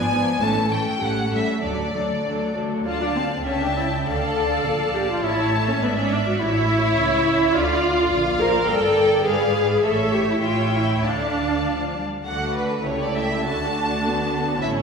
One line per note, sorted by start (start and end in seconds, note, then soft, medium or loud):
0.00 0.11 G#1 soft
0.00 0.11 F3 soft
0.00 0.10 B3 soft
0.00 0.11 D4 soft
0.00 0.11 D5 soft
0.00 0.40 G#5 medium
0.11 0.20 G#2 soft
0.11 0.41 F3 soft
0.11 0.41 B3 soft
0.11 0.41 D4 soft
0.11 0.41 D5 soft
0.41 0.69 A1 soft
0.41 0.49 A2 soft
0.41 0.69 E3 soft
0.41 0.70 A3 soft
0.41 0.69 C#4 soft
0.41 0.70 A4 soft
0.41 0.71 A5 medium
0.70 0.79 A2 soft
0.70 1.00 E3 soft
0.70 0.99 A3 soft
0.70 0.99 C#4 soft
0.70 0.99 A4 soft
0.70 1.01 G5 medium
1.00 1.30 A1 soft
1.00 1.09 A2 soft
1.00 1.29 G3 soft
1.00 1.29 A3 soft
1.00 1.30 C#4 soft
1.00 1.30 A4 soft
1.00 1.32 F#5 medium
1.30 1.40 A2 soft
1.30 1.62 G3 soft
1.30 1.60 A3 soft
1.30 1.62 C#4 soft
1.30 1.61 A4 soft
1.30 1.63 E5 soft
1.62 1.93 D2 soft
1.62 1.71 D3 soft
1.62 1.92 F#3 soft
1.62 1.92 A3 soft
1.62 1.94 D4 soft
1.62 1.93 A4 soft
1.62 2.55 D5 soft
1.93 2.02 D3 soft
1.93 2.23 F#3 soft
1.93 2.23 A3 soft
1.93 2.25 D4 soft
1.93 2.25 A4 soft
2.24 2.33 D3 soft
2.24 2.54 F#3 soft
2.24 2.54 A3 soft
2.24 2.56 D4 soft
2.24 2.56 A4 soft
2.55 2.64 D3 soft
2.55 2.86 F#3 soft
2.55 2.86 A3 soft
2.55 2.86 D4 soft
2.55 2.86 A4 soft
2.86 3.43 D2 soft
2.86 3.42 D3 soft
2.86 3.00 F4 medium
2.86 3.42 D5 soft
2.86 3.42 F5 soft
2.86 3.43 A5 soft
3.01 3.07 D4 soft
3.15 3.23 C4 soft
3.45 4.06 C#2 soft
3.45 4.06 C#3 soft
3.45 3.60 C#4 soft
3.45 4.07 E5 soft
3.45 4.07 G5 soft
3.45 4.07 A5 soft
3.62 3.77 D4 soft
3.77 3.85 E4 soft
4.07 4.66 D2 soft
4.07 4.66 D3 soft
4.07 4.93 A4 medium
4.07 5.22 D5 soft
4.07 5.24 F5 soft
4.07 5.23 A5 soft
4.66 5.25 A#1 soft
4.66 5.24 A#2 soft
4.95 5.10 G4 medium
5.11 5.25 F4 medium
5.24 5.82 A1 soft
5.24 5.81 A2 soft
5.24 5.54 E4 medium
5.24 5.81 C#5 soft
5.24 5.82 E5 soft
5.24 5.82 A5 soft
5.55 5.68 A3 medium
5.70 5.84 C#4 medium
5.83 6.40 G#1 soft
5.83 6.40 G#2 soft
5.83 5.89 B3 medium
5.83 6.41 D5 soft
5.83 6.40 E5 soft
5.83 6.41 E5 soft
5.99 6.12 C#4 medium
6.13 6.27 D4 medium
6.28 6.41 F#4 medium
6.41 6.97 A1 soft
6.41 6.97 A2 soft
6.41 7.56 E4 medium
6.41 7.55 C#5 medium
6.41 7.53 E5 soft
6.98 7.54 C#2 soft
6.98 7.54 C#3 soft
7.55 8.11 D2 soft
7.55 8.11 D3 medium
7.55 8.41 F4 medium
7.55 8.11 D5 soft
7.55 8.11 F5 soft
8.12 8.68 A#1 medium
8.12 8.68 A#2 soft
8.12 8.68 D5 soft
8.12 8.68 F5 soft
8.41 8.69 A#4 medium
8.41 8.69 C5 soft
8.69 9.26 G1 soft
8.69 9.26 G2 soft
8.69 9.26 A4 medium
8.69 9.25 A#4 soft
8.69 9.25 D5 soft
8.69 9.26 G5 soft
9.25 9.84 G#1 soft
9.25 9.84 G#2 soft
9.25 9.82 G#4 medium
9.25 9.84 B4 soft
9.25 9.83 D5 soft
9.25 9.83 F5 soft
9.84 10.39 A1 soft
9.84 10.39 A2 soft
9.84 10.13 A4 medium
9.84 10.39 C#5 soft
9.84 10.39 E5 soft
10.13 10.28 G4 medium
10.30 10.36 E4 soft
10.43 11.03 A1 soft
10.43 11.03 A2 soft
10.43 10.73 F4 medium
10.43 11.03 C#5 soft
10.43 11.03 E5 soft
10.43 11.04 G5 soft
10.74 11.04 E4 soft
11.04 12.06 D2 soft
11.04 11.59 D3 soft
11.04 11.96 D4 soft
11.04 12.06 D5 soft
11.04 12.06 F5 soft
11.04 12.06 A5 soft
11.66 11.94 F3 soft
11.96 12.26 G3 soft
12.25 12.82 D2 soft
12.25 12.82 D3 soft
12.25 12.81 A3 soft
12.25 12.81 D4 soft
12.25 12.82 F#4 soft
12.25 12.82 A4 soft
12.25 12.54 F#5 soft
12.57 12.85 B4 soft
12.85 13.47 C#2 soft
12.85 13.47 C#3 soft
12.85 13.45 A3 soft
12.85 13.45 E4 soft
12.85 13.46 G4 soft
12.85 13.45 A4 soft
12.85 13.02 C#5 soft
13.03 13.17 D5 soft
13.17 13.47 E5 soft
13.46 14.63 D2 soft
13.46 14.63 D3 soft
13.46 14.04 A3 soft
13.46 14.63 D4 soft
13.46 14.60 F#4 soft
13.46 14.60 A4 soft
13.46 14.61 A5 medium
14.05 14.63 B3 soft
14.62 14.82 A1 soft
14.62 14.82 A2 soft
14.62 14.82 C#4 soft
14.62 14.82 E4 soft
14.62 14.82 A4 soft
14.62 14.70 E5 soft